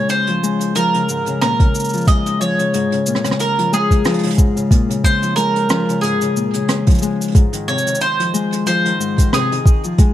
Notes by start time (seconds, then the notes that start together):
Already playing: C#3 G#3
0.09 C5, closed hi-hat, cabasa
0.27 F3, closed hi-hat
0.43 G#3, cabasa
0.61 closed hi-hat, cabasa
0.75 F3 A#4, closed hi-hat, cabasa
0.94 C#3, closed hi-hat
1.09 G#2, cabasa
1.26 C#3, closed hi-hat, cabasa
1.41 A#2 A#4, cross-stick, closed hi-hat, cabasa
1.60 C#3, kick, closed hi-hat
1.75 cabasa
1.80 cabasa
1.84 cabasa
1.89 cabasa
1.93 F3, cabasa
1.97 cabasa
2.01 cabasa
2.05 D#5, kick, closed hi-hat, cabasa
2.08 G#3, cabasa
2.26 closed hi-hat, cabasa
2.40 F3 C#5, cabasa
2.59 C#3, closed hi-hat, cabasa
2.74 G#2, closed hi-hat, cabasa
2.92 C#3, closed hi-hat
3.06 A#2, cabasa
3.15 cross-stick
3.24 C#3, cross-stick, closed hi-hat, cabasa
3.31 cross-stick
3.39 A#4, closed hi-hat, cabasa
3.58 F3, closed hi-hat
3.72 G#3 G#4, cabasa
3.91 kick, closed hi-hat, cabasa
4.05 F3, cross-stick, closed hi-hat, cabasa
4.09 closed hi-hat
4.14 closed hi-hat
4.19 closed hi-hat
4.23 C#3, closed hi-hat
4.27 closed hi-hat
4.30 closed hi-hat
4.34 G#2, closed hi-hat
4.38 kick, cabasa
4.56 C#3, cabasa
4.70 A#2, kick, closed hi-hat, cabasa
4.89 C#3, closed hi-hat, cabasa
5.04 C5, kick, cabasa
5.22 F3, closed hi-hat, cabasa
5.36 G#3 A#4, closed hi-hat, cabasa
5.56 closed hi-hat
5.69 F3, cross-stick, cabasa
5.88 C#3, closed hi-hat, cabasa
6.01 G#2 G#4, closed hi-hat, cabasa
6.21 C#3, closed hi-hat, cabasa
6.36 A#2, cabasa
6.54 C#3, closed hi-hat, cabasa
6.68 cross-stick, closed hi-hat, cabasa
6.87 F3, kick, closed hi-hat, cabasa
6.90 closed hi-hat, cabasa
6.94 closed hi-hat, cabasa
6.98 closed hi-hat, cabasa
7.01 G#3, closed hi-hat, cabasa
7.06 closed hi-hat
7.11 closed hi-hat
7.15 closed hi-hat
7.21 closed hi-hat, cabasa
7.24 closed hi-hat
7.28 closed hi-hat
7.32 G#2, closed hi-hat
7.35 kick, closed hi-hat, cabasa
7.53 D#3, closed hi-hat, cabasa
7.68 C3 C#5, cabasa
7.78 cabasa
7.86 D#3, closed hi-hat, cabasa
7.95 cabasa
8.01 C5, closed hi-hat, cabasa
8.19 F3, closed hi-hat
8.34 G#3, cabasa
8.52 closed hi-hat, cabasa
8.67 F3 C5, closed hi-hat, cabasa
8.86 D#3, closed hi-hat
9.00 G#2, cabasa
9.18 D#3, kick, closed hi-hat, cabasa
9.33 C3 G#4, cross-stick, closed hi-hat, cabasa
9.51 D#3, closed hi-hat
9.66 kick, cabasa
9.84 F3, cabasa
9.98 G#3, kick, closed hi-hat, cabasa